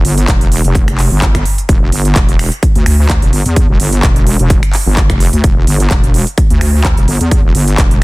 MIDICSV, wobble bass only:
0, 0, Header, 1, 2, 480
1, 0, Start_track
1, 0, Tempo, 468750
1, 1730, Time_signature, 4, 2, 24, 8
1, 8231, End_track
2, 0, Start_track
2, 0, Title_t, "Wobble bass"
2, 0, Program_c, 0, 39
2, 49, Note_on_c, 0, 31, 90
2, 272, Note_off_c, 0, 31, 0
2, 290, Note_on_c, 0, 28, 99
2, 639, Note_off_c, 0, 28, 0
2, 660, Note_on_c, 0, 29, 90
2, 1119, Note_off_c, 0, 29, 0
2, 1140, Note_on_c, 0, 31, 98
2, 1472, Note_off_c, 0, 31, 0
2, 1730, Note_on_c, 0, 28, 96
2, 1952, Note_off_c, 0, 28, 0
2, 1969, Note_on_c, 0, 31, 90
2, 2192, Note_off_c, 0, 31, 0
2, 2210, Note_on_c, 0, 28, 97
2, 2559, Note_off_c, 0, 28, 0
2, 2820, Note_on_c, 0, 38, 100
2, 2912, Note_off_c, 0, 38, 0
2, 2929, Note_on_c, 0, 38, 98
2, 3279, Note_off_c, 0, 38, 0
2, 3300, Note_on_c, 0, 28, 97
2, 3392, Note_off_c, 0, 28, 0
2, 3409, Note_on_c, 0, 31, 102
2, 3519, Note_off_c, 0, 31, 0
2, 3540, Note_on_c, 0, 40, 94
2, 3759, Note_off_c, 0, 40, 0
2, 3780, Note_on_c, 0, 28, 96
2, 3872, Note_off_c, 0, 28, 0
2, 3889, Note_on_c, 0, 31, 87
2, 4112, Note_off_c, 0, 31, 0
2, 4130, Note_on_c, 0, 28, 103
2, 4479, Note_off_c, 0, 28, 0
2, 4500, Note_on_c, 0, 28, 94
2, 4719, Note_off_c, 0, 28, 0
2, 4980, Note_on_c, 0, 31, 98
2, 5199, Note_off_c, 0, 31, 0
2, 5220, Note_on_c, 0, 29, 97
2, 5439, Note_off_c, 0, 29, 0
2, 5460, Note_on_c, 0, 38, 97
2, 5552, Note_off_c, 0, 38, 0
2, 5570, Note_on_c, 0, 28, 99
2, 5792, Note_off_c, 0, 28, 0
2, 5809, Note_on_c, 0, 31, 94
2, 6032, Note_off_c, 0, 31, 0
2, 6050, Note_on_c, 0, 28, 102
2, 6400, Note_off_c, 0, 28, 0
2, 6660, Note_on_c, 0, 38, 100
2, 6752, Note_off_c, 0, 38, 0
2, 6769, Note_on_c, 0, 38, 102
2, 7119, Note_off_c, 0, 38, 0
2, 7140, Note_on_c, 0, 28, 94
2, 7232, Note_off_c, 0, 28, 0
2, 7249, Note_on_c, 0, 31, 109
2, 7359, Note_off_c, 0, 31, 0
2, 7380, Note_on_c, 0, 40, 96
2, 7599, Note_off_c, 0, 40, 0
2, 7620, Note_on_c, 0, 28, 93
2, 7712, Note_off_c, 0, 28, 0
2, 7729, Note_on_c, 0, 31, 91
2, 7952, Note_off_c, 0, 31, 0
2, 7970, Note_on_c, 0, 28, 100
2, 8231, Note_off_c, 0, 28, 0
2, 8231, End_track
0, 0, End_of_file